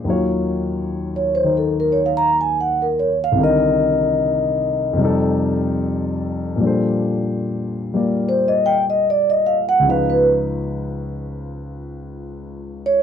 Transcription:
0.04 3.35 D#2 soft
0.04 1.43 D#3 soft
0.04 3.36 F#3 soft
0.09 3.37 F4 soft
0.09 3.37 C#5 medium
1.16 1.43 C#5 medium
1.35 1.53 C5 medium
1.44 3.35 D#3 soft
1.44 3.36 D#4 soft
1.44 3.37 C5 soft
1.57 1.71 A4 medium
1.80 1.93 A#4 medium
1.92 2.00 C#5 medium
2.06 2.29 F5 medium
2.17 2.35 A#5 medium
2.41 2.54 G#5 medium
2.61 2.83 F#5 medium
2.82 3.08 A#4 medium
2.99 3.17 C#5 medium
3.24 3.36 F5 medium
3.32 4.96 C2 medium
3.32 4.95 C3 medium
3.38 5.01 D3 soft
3.38 4.99 D#3 medium
3.43 5.02 A#4 medium
3.43 4.98 D#5 medium
4.93 6.57 F2 medium
4.93 6.59 C3 medium
5.00 6.59 G3 medium
5.00 6.61 D#4 medium
5.05 6.63 A4 medium
6.56 9.81 A#2 medium
6.56 9.82 F3 soft
6.60 7.92 G3 soft
6.60 9.84 D4 soft
6.65 9.85 A4 soft
6.65 9.86 C5 medium
7.94 9.83 G3 soft
7.94 9.83 A#3 soft
7.94 9.84 F4 soft
7.94 9.84 A#4 soft
7.94 9.84 D5 soft
8.29 8.50 C5 medium
8.48 8.74 D#5 medium
8.66 8.83 G5 loud
8.90 9.02 D#5 medium
9.10 9.32 D5 medium
9.30 9.55 D#5 medium
9.46 9.64 F5 medium
9.69 9.82 F#5 loud
9.79 13.03 C#2 medium
9.79 13.03 C#3 medium
9.85 13.03 F3 soft
9.85 13.03 D#4 soft
9.90 13.03 B4 medium
9.90 10.12 F5 medium
10.10 10.26 B4 medium
12.86 13.03 C#5 loud

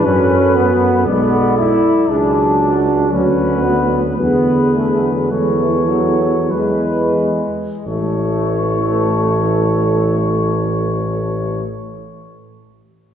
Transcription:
0.00 1.04 B4 medium
0.05 1.08 F#2 medium
0.05 1.09 F#3 medium
0.05 0.56 C#4 medium
0.05 2.06 A4 medium
0.56 1.06 B3 medium
1.06 1.80 B1 medium
1.06 1.80 G#3 soft
1.06 1.57 B3 medium
1.06 2.79 D5 soft
1.59 2.08 E4 medium
2.09 3.14 C#2 soft
2.09 3.08 F#3 medium
2.09 3.12 D4 medium
2.09 2.60 G#4 medium
2.60 3.12 F#4 soft
3.12 4.19 D2 medium
3.12 4.20 F#3 soft
3.12 3.64 C#4 medium
3.12 4.17 F#4 soft
3.12 4.14 B4 soft
3.65 4.03 B3 medium
4.16 6.48 E2 soft
4.16 5.33 D3 soft
4.16 4.73 B3 medium
4.16 5.31 G#4 soft
4.16 5.27 B4 soft
4.75 5.03 A3 medium
5.02 5.31 F#3 medium
5.30 6.53 E3 soft
5.30 5.60 G#3 medium
5.30 6.51 A4 soft
5.30 6.52 C#5 soft
5.59 5.90 E3 medium
5.89 6.52 F#3 medium
6.51 7.41 E2 soft
6.51 7.42 E3 soft
6.51 7.86 G#3 soft
6.51 7.43 B4 soft
7.85 11.63 A1 soft
7.85 11.62 E3 soft
7.85 11.64 A3 medium
7.85 11.61 A4 soft
7.85 11.62 C#5 soft

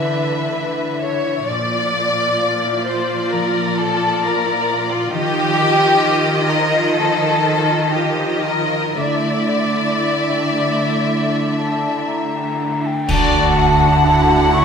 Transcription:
0.00 1.44 D3 soft
0.00 1.52 D3 soft
0.00 1.44 E3 soft
0.00 1.51 A3 soft
0.00 1.44 D4 soft
0.00 0.54 E4 soft
0.00 0.31 A4 soft
0.00 1.02 B4 soft
0.00 1.44 E5 soft
0.07 0.48 B4 soft
0.32 1.01 A4 soft
0.55 1.25 E4 soft
0.78 1.18 D4 soft
1.02 1.52 A4 soft
1.02 1.47 C#5 medium
1.26 1.52 E4 soft
1.47 5.10 A#2 soft
1.47 5.19 A#2 soft
1.47 5.10 F3 soft
1.47 5.12 F4 soft
1.47 5.10 D5 soft
1.47 2.88 D5 medium
1.95 2.35 C5 soft
2.42 3.09 F4 soft
2.64 3.03 E4 soft
2.87 3.32 C5 medium
3.10 4.22 F4 soft
3.32 7.22 F3 soft
3.32 3.79 A#4 medium
3.77 4.24 A4 medium
3.77 4.17 C5 soft
4.23 4.89 F4 soft
4.23 4.91 A#4 medium
4.46 4.85 E4 soft
4.90 5.14 F4 medium
4.90 6.03 F4 soft
5.12 9.00 D#3 medium
5.12 8.92 D#3 medium
5.12 7.89 F3 medium
5.12 7.89 F4 soft
5.12 6.49 G4 medium
5.12 7.89 D#5 medium
5.37 9.00 G4 soft
5.59 5.97 C5 soft
6.04 6.71 F4 soft
6.26 6.66 D#4 soft
6.49 6.96 A#4 medium
6.72 7.92 F4 soft
6.95 9.00 A#3 soft
6.95 7.91 A4 medium
7.44 7.86 C5 soft
7.68 8.43 A#4 soft
7.92 8.93 F3 soft
7.92 8.93 F4 soft
7.92 8.68 F4 soft
7.92 8.44 G4 medium
7.92 8.93 D#5 soft
8.19 8.62 D#4 soft
8.44 9.00 A#4 soft
8.44 8.96 A#4 medium
8.70 9.00 F4 soft
8.95 12.86 D3 soft
8.95 12.84 D3 soft
8.95 12.87 A3 soft
8.95 12.83 E4 soft
8.95 12.08 D5 medium
8.95 12.88 E5 soft
9.22 9.74 D5 soft
9.48 9.93 E5 soft
9.76 10.53 D5 soft
10.00 13.90 E4 soft
10.28 10.72 G4 soft
10.54 11.30 D5 soft
11.07 14.65 A3 soft
11.32 11.81 D5 soft
11.56 12.00 E5 soft
11.56 12.10 A5 medium
11.82 12.58 D5 soft
12.08 12.88 A#5 soft
12.33 12.77 G4 soft
12.59 13.30 D5 soft
12.84 14.03 A4 soft
12.84 13.12 G5 medium
13.08 14.65 D2 medium
13.08 14.65 D3 medium
13.08 14.00 D4 medium
13.08 14.00 F#4 medium
13.08 13.54 D5 medium
13.08 14.55 A5 medium
13.08 concert bass drum medium
13.08 crash medium
13.31 13.79 D5 soft
13.56 13.97 E5 soft
13.56 14.65 F#5 medium
13.80 14.50 D5 soft
14.03 14.65 E4 medium
14.03 14.51 F#4 medium
14.03 14.65 A4 soft
14.27 14.65 G4 soft
14.52 14.65 E4 medium
14.52 14.65 D5 soft
14.52 14.65 C#6 medium

